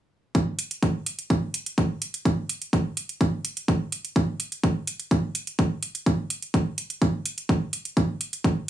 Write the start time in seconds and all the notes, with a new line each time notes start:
0.35 kick, closed hi-hat
0.59 closed hi-hat
0.71 closed hi-hat
0.83 kick, closed hi-hat
1.06 closed hi-hat
1.19 closed hi-hat
1.30 kick, closed hi-hat
1.54 closed hi-hat
1.66 closed hi-hat
1.78 kick, closed hi-hat
2.02 closed hi-hat
2.14 closed hi-hat
2.25 kick, closed hi-hat
2.49 closed hi-hat
2.62 closed hi-hat
2.73 kick, closed hi-hat
2.97 closed hi-hat
3.09 closed hi-hat
3.21 kick, closed hi-hat
3.45 closed hi-hat
3.57 closed hi-hat
3.68 kick, closed hi-hat
3.92 closed hi-hat
4.05 closed hi-hat
4.16 kick, closed hi-hat
4.40 closed hi-hat
4.52 closed hi-hat
4.64 kick, closed hi-hat
4.87 closed hi-hat
5.00 closed hi-hat
5.11 kick, closed hi-hat
5.35 closed hi-hat
5.47 closed hi-hat
5.59 kick, closed hi-hat
5.83 closed hi-hat
5.95 closed hi-hat
6.06 kick, closed hi-hat
6.30 closed hi-hat
6.42 closed hi-hat
6.54 kick, closed hi-hat
6.78 closed hi-hat
6.90 closed hi-hat
7.02 kick, closed hi-hat
7.26 closed hi-hat
7.38 closed hi-hat
7.49 kick, closed hi-hat
7.73 closed hi-hat
7.85 closed hi-hat
7.97 kick, closed hi-hat
8.21 closed hi-hat
8.33 closed hi-hat
8.44 kick, closed hi-hat